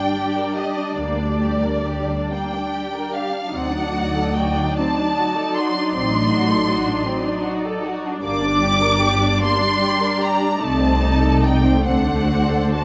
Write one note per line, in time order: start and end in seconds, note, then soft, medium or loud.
0.00 3.50 G3 soft
0.00 0.14 D4 soft
0.00 3.50 D4 soft
0.00 3.50 D5 soft
0.00 0.55 G5 medium
0.16 0.35 G4 soft
0.38 0.57 A#4 soft
0.56 0.77 G4 soft
0.56 0.97 D#5 medium
0.77 0.97 D4 soft
0.97 2.09 D2 soft
0.97 1.18 A#3 soft
0.97 2.32 D5 soft
1.19 1.41 D4 soft
1.42 1.64 G4 soft
1.63 1.86 A#4 soft
1.88 2.10 G4 soft
2.11 2.33 D4 soft
2.32 2.54 A#3 soft
2.32 3.13 G5 medium
2.54 2.74 D4 soft
2.75 2.95 G4 soft
2.95 3.14 A#4 soft
3.15 3.35 G4 soft
3.15 3.54 F5 medium
3.33 3.53 D4 soft
3.54 4.57 D2 soft
3.54 8.21 F#3 soft
3.54 3.73 C4 soft
3.54 8.21 D#4 soft
3.54 8.20 D5 soft
3.54 4.37 F#5 medium
3.71 3.93 D4 soft
3.91 4.14 F#4 soft
4.14 4.35 A4 soft
4.37 4.57 F#4 soft
4.37 4.77 G5 medium
4.57 4.77 D4 soft
4.78 4.98 C4 soft
4.78 5.55 A5 medium
4.97 5.17 D4 soft
5.18 5.37 F#4 soft
5.36 5.56 A4 soft
5.56 5.76 F#4 soft
5.56 5.93 C6 medium
5.75 5.95 D4 soft
5.94 6.90 A1 medium
5.94 6.89 A2 medium
5.94 6.13 C4 soft
5.94 7.43 C6 medium
6.13 6.32 D4 soft
6.32 6.51 F#4 soft
6.50 6.70 A4 soft
6.70 6.89 F#4 soft
6.87 7.07 D4 soft
7.06 7.27 C4 soft
7.25 7.46 D4 soft
7.44 7.65 F#4 soft
7.66 7.85 A4 soft
7.85 8.04 F#4 soft
8.06 8.25 D4 soft
8.24 9.22 G1 medium
8.24 9.22 G2 medium
8.24 10.60 G3 medium
8.24 8.42 A#3 soft
8.24 10.60 D4 medium
8.24 11.81 D5 medium
8.24 9.38 D6 medium
8.44 8.63 D4 soft
8.63 8.83 G4 soft
8.81 9.01 A#4 soft
9.00 9.21 G4 medium
9.22 9.42 D4 soft
9.40 9.62 A#3 medium
9.40 10.24 C6 medium
9.61 9.82 D4 soft
9.80 10.02 G4 soft
10.00 10.22 A#4 soft
10.19 10.41 G4 medium
10.23 10.63 A#5 medium
10.39 10.61 D4 soft
10.62 11.65 C2 medium
10.62 11.64 C3 medium
10.62 10.81 A3 medium
10.62 12.84 A3 medium
10.62 11.85 D#4 medium
10.62 11.44 A5 medium
10.82 11.03 C4 soft
11.02 11.23 D#4 soft
11.22 11.43 A4 soft
11.42 11.64 D#4 soft
11.42 11.86 G5 medium
11.64 11.82 C4 soft
11.82 12.84 D2 medium
11.82 12.84 D3 medium
11.82 12.04 C4 soft
11.82 12.84 D4 medium
11.82 12.84 C5 soft
11.82 12.70 F#5 medium
12.05 12.27 D4 soft
12.26 12.49 F#4 soft
12.49 12.72 A4 soft
12.72 12.84 F#4 soft
12.72 12.84 A5 medium